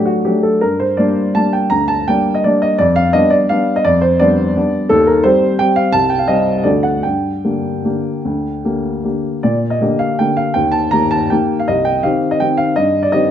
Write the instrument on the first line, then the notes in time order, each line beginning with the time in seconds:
upright piano
Already playing: F#3 A3 D4
0.05 F#4
0.25 F#3 A3 D4 G4
0.43 A4
0.61 G2 A#4
0.80 C5
0.97 G3 A#3 D4 D5
1.35 G3 A#3 D4 A5
1.53 G5
1.70 D2 A#5
1.88 A5
2.08 G3 A#3 D4 G5
2.35 D#5
2.44 G3 A#3 D4 D5
2.62 D#5
2.79 F2 D5
2.96 F5
3.13 G3 B3 D4 D#5
3.30 D5
3.49 G3 B3 D4 F5
3.76 D#5
3.85 F2 D5
4.01 C5
4.20 G3 B3 D4 D5
4.57 G3 B3 D4
4.89 D#2 A4
5.07 A#4
5.24 G3 C4 G4 C5
5.59 G3 C4 G4 G5
5.76 F5
5.92 C2 A5
6.10 G5
6.19 F5
6.28 G3 C4 G4 D#5
6.64 D2 D3 A3 F#4 D5
6.83 F#5
7.03 G2 G5
7.44 D3 A#3 G4
7.84 D3 A#3 G4
8.25 D2
8.65 D3 A#3 G4
9.04 D3 A#3 G4
9.43 A#2 D5
9.70 D#5
9.81 D3 A#3 G4
9.99 F5
10.19 D3 A#3 G4 G5
10.37 F5
10.54 D#2 G5
10.72 A5
10.91 D#3 A#3 G4 A#5
11.11 A5
11.30 D#3 A#3 G4 G5
11.60 F5
11.68 C2 D#5
11.85 G5
12.03 D#3 C4 G4 F5
12.31 D#5
12.40 D#3 C4 G4 G5
12.57 F5
12.76 G2 D#5
13.03 D5
13.12 D#3 C4 G4 D#5